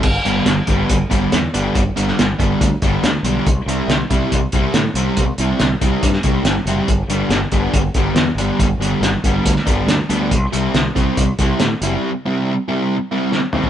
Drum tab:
CC |x---------------|----------------|----------------|----------------|
HH |--x-x-x-x-x-x-x-|x-x-x-x-x-x-x-x-|x-x-x-x-x-x-x-x-|x-x-x-x-x-x-x-x-|
SD |----o-------o---|---oo-------o---|----o-------o---|----o----o--o---|
T2 |----------------|----------------|----------------|----------------|
FT |----------------|----------------|----------------|----------------|
BD |o-----o-o-o-----|o-----o-o-o-----|o-----o-o-o-----|o-----o-o-o-----|

CC |----------------|----------------|----------------|----------------|
HH |x-x-x-x-x-x-x-x-|x-x-x-x-x-x-x-x-|x-x-x-x-x-x-x-x-|----------------|
SD |----o-------o---|----o----o--o---|----o-------o---|------------o---|
T2 |----------------|----------------|----------------|--------------o-|
FT |----------------|----------------|----------------|---------------o|
BD |o-----o-o-o-----|o-----o-o-o-----|o-----o-o-o-----|----------------|